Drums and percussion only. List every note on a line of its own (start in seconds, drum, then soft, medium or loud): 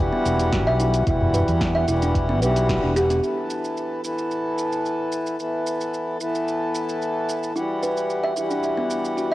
0.26 closed hi-hat soft
0.26 shaker medium
0.40 closed hi-hat soft
0.40 shaker soft
0.53 kick medium
0.53 snare loud
0.53 closed hi-hat medium
0.53 shaker soft
0.80 closed hi-hat soft
0.80 shaker medium
0.94 closed hi-hat medium
0.94 shaker soft
1.07 kick loud
1.07 closed hi-hat medium
1.07 shaker soft
1.21 udu medium
1.34 closed hi-hat soft
1.34 udu medium
1.34 shaker medium
1.48 closed hi-hat soft
1.48 shaker soft
1.61 kick loud
1.61 snare loud
1.61 closed hi-hat medium
1.61 shaker soft
1.88 closed hi-hat soft
1.88 shaker medium
2.02 closed hi-hat soft
2.02 shaker soft
2.15 kick loud
2.15 closed hi-hat medium
2.15 shaker soft
2.42 closed hi-hat soft
2.42 shaker medium
2.56 closed hi-hat soft
2.56 shaker soft
2.69 kick medium
2.69 snare loud
2.69 closed hi-hat medium
2.69 shaker soft
2.96 closed hi-hat soft
2.96 shaker medium
3.10 closed hi-hat medium
3.10 shaker soft
3.23 shaker soft
3.50 shaker medium
3.64 shaker soft
3.77 shaker soft
4.04 shaker medium
4.19 shaker soft
4.31 shaker soft
4.59 shaker medium
4.73 shaker soft
4.86 shaker soft
5.12 shaker medium
5.27 shaker soft
5.40 shaker soft
5.67 shaker medium
5.81 shaker soft
5.94 shaker soft
6.21 shaker medium
6.35 shaker soft
6.48 shaker soft
6.75 shaker medium
6.89 shaker soft
7.02 shaker soft
7.29 shaker medium
7.43 shaker soft
7.56 shaker soft
7.83 shaker medium
7.97 shaker soft
8.10 shaker soft
8.37 shaker medium
8.51 shaker soft
8.64 shaker soft
8.91 shaker medium
9.05 shaker soft
9.18 shaker soft